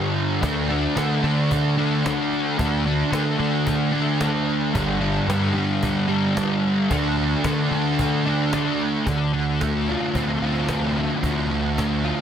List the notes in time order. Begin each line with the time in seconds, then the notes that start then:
Already playing: G2 D3 G3
0.17 cajon slap
0.42 D2 D3 A3 D4, cajon bass
0.69 A3 D4, cajon slap
0.96 D3 A3 D4, cajon slap
1.23 D3 A3 D4, cajon slap
1.51 cajon bass
1.77 A3 D4, cajon slap
2.04 D3 A3 D4, cajon slap
2.33 cajon slap
2.58 D2 D3 A3 D4, cajon bass
2.85 A3 D4, cajon slap
3.11 D3 A3 D4, cajon slap
3.38 D3 A3 D4, cajon slap
3.67 cajon bass
3.92 A3 D4, cajon slap
4.20 D3 A3 D4, cajon slap
4.49 cajon slap
4.73 G1 G2 D3 G3, cajon bass
5.00 D3 G3, cajon slap
5.27 G2 D3 G3, cajon slap
5.54 G2 D3 G3, cajon slap
5.83 cajon bass
6.08 D3 G3, cajon slap
6.35 G2 D3 G3, cajon slap
6.64 cajon slap
6.90 D2 D3 A3 D4, cajon bass
7.17 A3 D4, cajon slap
7.44 D3 A3 D4, cajon bass, cajon slap
7.71 D3 A3 D4, cajon slap
7.99 cajon bass
8.26 A3 D4, cajon slap
8.52 D3 A3 D4, cajon slap
8.80 cajon slap
9.06 D2 D3, cajon bass
9.33 D3, cajon slap
9.60 A3, cajon bass, cajon slap
9.88 F4, cajon slap
10.15 D2 C4, cajon bass
10.41 D2 F4, cajon slap
10.55 cajon slap
10.68 A3, cajon bass, cajon slap
10.95 D3, cajon slap
11.09 cajon slap
11.23 D2 D3, cajon bass
11.50 D3
11.78 A3, cajon bass, cajon slap
12.04 F4, cajon slap